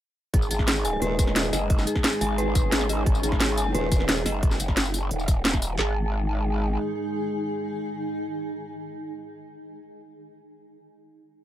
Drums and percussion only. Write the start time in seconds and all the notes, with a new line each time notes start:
0.34 kick, closed hi-hat
0.42 tambourine
0.51 closed hi-hat, tambourine
0.59 kick, snare
0.68 snare, closed hi-hat
0.76 tambourine
0.85 open hi-hat, tambourine
1.02 closed hi-hat
1.19 kick, closed hi-hat, tambourine
1.27 snare
1.36 snare, closed hi-hat
1.44 tambourine
1.53 snare, open hi-hat, tambourine
1.70 kick, closed hi-hat
1.78 snare, tambourine
1.87 closed hi-hat, tambourine
1.96 kick, snare
2.04 snare, closed hi-hat
2.13 tambourine
2.21 open hi-hat, tambourine
2.38 closed hi-hat
2.55 kick, closed hi-hat, tambourine
2.72 snare, closed hi-hat
2.81 snare, tambourine
2.89 open hi-hat, tambourine
3.06 kick, closed hi-hat
3.15 tambourine
3.23 closed hi-hat, tambourine
3.32 kick, snare
3.40 snare, closed hi-hat
3.49 tambourine
3.57 open hi-hat, tambourine
3.75 closed hi-hat
3.92 kick, closed hi-hat, tambourine
4.00 snare
4.09 snare, closed hi-hat
4.17 tambourine
4.26 snare, open hi-hat, tambourine
4.43 kick, closed hi-hat
4.51 snare, tambourine
4.60 closed hi-hat, tambourine
4.68 kick, snare
4.77 snare, closed hi-hat
4.85 tambourine
4.94 open hi-hat, tambourine
5.11 closed hi-hat
5.19 tambourine
5.28 kick, closed hi-hat, tambourine
5.45 snare, closed hi-hat
5.53 kick, snare, tambourine
5.62 open hi-hat, tambourine
5.79 snare, clap